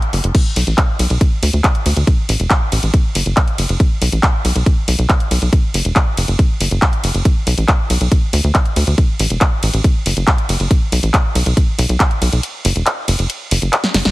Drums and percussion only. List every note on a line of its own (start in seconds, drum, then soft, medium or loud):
0.02 closed hi-hat soft
0.13 open hi-hat medium
0.24 closed hi-hat medium
0.35 kick loud
0.35 closed hi-hat medium
0.35 crash medium
0.56 open hi-hat loud
0.56 ride medium
0.67 closed hi-hat medium
0.78 kick loud
0.78 clap loud
0.78 closed hi-hat medium
0.99 open hi-hat medium
0.99 ride medium
1.10 closed hi-hat medium
1.21 kick loud
1.21 closed hi-hat medium
1.43 open hi-hat loud
1.43 ride medium
1.53 closed hi-hat medium
1.64 kick loud
1.64 clap loud
1.64 closed hi-hat medium
1.75 closed hi-hat soft
1.86 open hi-hat loud
1.86 ride medium
1.97 closed hi-hat medium
2.07 kick loud
2.07 closed hi-hat medium
2.29 open hi-hat loud
2.29 ride medium
2.40 closed hi-hat medium
2.50 kick loud
2.50 clap loud
2.50 closed hi-hat medium
2.72 open hi-hat medium
2.72 ride medium
2.83 closed hi-hat medium
2.94 kick loud
2.94 closed hi-hat medium
3.15 open hi-hat loud
3.15 ride medium
3.26 closed hi-hat medium
3.37 kick loud
3.37 clap loud
3.37 closed hi-hat medium
3.48 closed hi-hat soft
3.58 open hi-hat loud
3.58 ride medium
3.69 closed hi-hat medium
3.80 kick loud
3.80 closed hi-hat medium
4.02 open hi-hat loud
4.02 ride medium
4.12 closed hi-hat medium
4.23 kick loud
4.23 clap loud
4.23 closed hi-hat medium
4.45 open hi-hat medium
4.45 ride medium
4.56 closed hi-hat medium
4.66 kick loud
4.66 closed hi-hat medium
4.88 open hi-hat loud
4.88 ride medium
4.99 closed hi-hat medium
5.09 kick loud
5.09 clap loud
5.09 closed hi-hat medium
5.20 closed hi-hat soft
5.31 open hi-hat loud
5.31 ride medium
5.42 closed hi-hat medium
5.53 kick loud
5.53 closed hi-hat medium
5.74 open hi-hat loud
5.74 ride medium
5.85 closed hi-hat medium
5.96 kick loud
5.96 clap loud
5.96 closed hi-hat medium
6.17 open hi-hat loud
6.17 ride medium
6.28 closed hi-hat medium
6.39 kick loud
6.39 closed hi-hat medium
6.61 open hi-hat loud
6.61 ride medium
6.71 closed hi-hat soft
6.82 kick loud
6.82 clap loud
6.82 closed hi-hat medium
6.93 closed hi-hat soft
7.04 open hi-hat loud
7.04 ride medium
7.14 closed hi-hat soft
7.25 kick loud
7.25 closed hi-hat medium
7.47 open hi-hat loud
7.47 ride medium
7.58 closed hi-hat medium
7.68 kick loud
7.68 clap loud
7.68 closed hi-hat medium
7.90 open hi-hat loud
7.90 ride medium
8.01 closed hi-hat medium
8.12 kick loud
8.12 closed hi-hat medium
8.33 open hi-hat loud
8.33 ride medium
8.44 closed hi-hat medium
8.55 kick loud
8.55 clap loud
8.55 closed hi-hat medium
8.66 closed hi-hat soft
8.76 open hi-hat medium
8.76 ride medium
8.87 closed hi-hat medium
8.98 kick loud
8.98 closed hi-hat medium
9.19 open hi-hat loud
9.19 ride medium
9.30 closed hi-hat medium
9.41 kick loud
9.41 clap loud
9.41 closed hi-hat medium
9.63 open hi-hat medium
9.63 ride medium
9.73 closed hi-hat medium
9.84 kick loud
9.84 closed hi-hat medium
10.06 open hi-hat loud
10.06 ride medium
10.17 closed hi-hat medium
10.27 kick loud
10.27 clap loud
10.27 closed hi-hat medium
10.38 closed hi-hat soft
10.49 open hi-hat medium
10.49 ride medium
10.60 closed hi-hat medium
10.71 kick loud
10.71 closed hi-hat medium
10.92 open hi-hat loud
10.92 ride medium
11.03 closed hi-hat medium
11.14 kick loud
11.14 clap loud
11.14 closed hi-hat medium
11.35 open hi-hat medium
11.35 ride medium
11.46 closed hi-hat medium
11.57 kick loud
11.57 closed hi-hat medium
11.79 open hi-hat loud
11.79 ride medium
11.89 closed hi-hat medium
12.00 kick loud
12.00 clap loud
12.00 closed hi-hat medium
12.11 closed hi-hat soft
12.22 open hi-hat medium
12.22 ride medium
12.33 closed hi-hat medium
12.43 closed hi-hat medium
12.65 open hi-hat loud
12.65 ride medium
12.76 closed hi-hat medium
12.86 clap loud
12.86 closed hi-hat medium
13.08 open hi-hat medium
13.08 ride medium
13.19 closed hi-hat medium
13.30 closed hi-hat medium
13.51 open hi-hat loud
13.51 ride medium
13.62 closed hi-hat medium
13.73 clap loud
13.73 closed hi-hat medium
13.84 snare medium
13.84 closed hi-hat soft
13.94 snare medium
13.94 open hi-hat medium
13.94 ride medium
14.05 snare medium
14.05 closed hi-hat medium